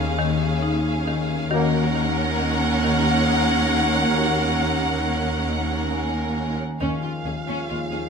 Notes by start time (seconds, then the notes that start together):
Already playing: D#2 C#4 G#4 F5
0.18 D#3
0.63 D#4
1.08 D#3
1.50 D#2 D#3 A#3 C#4 F#4 A#4 F#5
1.95 D#3
2.40 D#3
2.84 D#3
3.28 D#4
3.72 D#3
4.15 D#3 A#3 C#4 F#4
4.61 D#3
5.04 D#3
5.49 D#3
5.93 D#4 G#5
6.36 D#3
6.80 D#2 D#3 F3 G#3 C#4 F4 F5
7.03 D#2 C#4 F4
7.25 D#2 D#3 C#4 G#4
7.47 D#2 C#4
7.68 D#2 D#3 C#4 F4
7.91 D#2 C#4 G#4